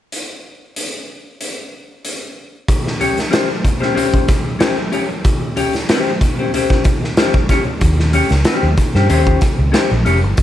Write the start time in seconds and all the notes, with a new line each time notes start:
0.12 closed hi-hat
0.76 closed hi-hat
1.41 closed hi-hat
2.05 closed hi-hat
2.68 kick, closed hi-hat
2.87 snare
3.00 C#4 G4 C#5, closed hi-hat
3.17 snare, closed hi-hat
3.31 C#4 G4 C5, snare, closed hi-hat
3.64 muted clean electric guitar stroke, kick, closed hi-hat
3.80 C#4 G4 C5, snare
3.94 C#4 G4 C5, closed hi-hat
4.14 kick, closed hi-hat
4.27 muted clean electric guitar stroke, kick, snare, closed hi-hat
4.45 muted clean electric guitar stroke
4.59 C#4 G4 C5, snare, closed hi-hat
4.76 muted clean electric guitar stroke
4.92 C#4 G4 C#5, closed hi-hat
5.09 muted clean electric guitar stroke
5.25 kick, closed hi-hat
5.56 C#4 G4 C#5, closed hi-hat
5.73 snare, closed hi-hat
5.89 C#4 G4 C5, snare, closed hi-hat
6.21 muted clean electric guitar stroke, kick, closed hi-hat
6.39 C#4 G4 C5
6.54 C#4 G4 C5, closed hi-hat
6.70 kick, snare
6.84 muted clean electric guitar stroke, kick, closed hi-hat
7.03 muted clean electric guitar stroke, snare
7.17 C#4 G4 C5, snare, closed hi-hat
7.34 muted clean electric guitar stroke, kick
7.49 C#4 G4 C#5, kick, snare, closed hi-hat
7.66 muted clean electric guitar stroke
7.81 D#2, kick, closed hi-hat
8.00 snare
8.13 C#4 G4 C#5, closed hi-hat
8.29 C#2, snare, closed hi-hat
8.45 C#4 G4 C5, snare, closed hi-hat
8.63 D#2
8.77 muted clean electric guitar stroke, kick, closed hi-hat
8.95 G2 C#4 G4 C5, snare
9.10 D#2 C#4 G4 C5, closed hi-hat
9.27 kick
9.41 muted clean electric guitar stroke, kick, snare, closed hi-hat
9.59 C#2, muted clean electric guitar stroke
9.72 C#4 G4 C5, snare, closed hi-hat
9.91 A#1, muted clean electric guitar stroke
10.05 F1 C#4 G4 C#5, closed hi-hat
10.22 G1, muted clean electric guitar stroke
10.37 G#1, kick, closed hi-hat